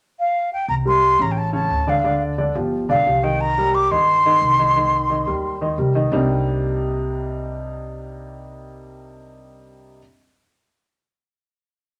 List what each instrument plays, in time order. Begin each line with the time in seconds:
0.19 flute F5
0.53 flute G5
0.68 upright bass C2, flute A#5
0.85 grand piano G3 G4 A#4, flute C6
1.19 upright bass A1, grand piano C#3 C#4 C#5, flute A#5
1.31 flute G5
1.38 flute A5
1.53 grand piano C#3 C#4 C#5, flute A5
1.70 upright bass D2
1.87 grand piano D3 D4 D5, flute F5
2.04 grand piano D3 D4 D5
2.38 grand piano D3 D4 D5
2.55 upright bass G1, grand piano F3 F4 G4
2.89 upright bass B1, grand piano D3 D4 D5, flute F5
3.06 upright bass C2, grand piano F3 F4 G4
3.23 grand piano D#3 D#4 D#5, flute G5
3.41 flute A#5
3.58 grand piano G3 G4 A#4
3.75 flute D6
3.91 upright bass G2, grand piano D#3 D#4 D#5, flute C6
4.26 grand piano D#3 D#4 D#5
4.42 upright bass C2
4.59 grand piano D#3 D#4 D#5
4.76 grand piano D#3 D#4 D#5
5.10 grand piano D#3 D#4 D#5
5.26 upright bass D#2, grand piano G3 G4 A#4
5.61 grand piano D#3 D#4 D#5
5.78 upright bass C2, grand piano G3 G4 A#4
5.95 grand piano D#3 D#4 D#5
6.12 upright bass C2, grand piano C3 G3 A#3 C4 D4 D#4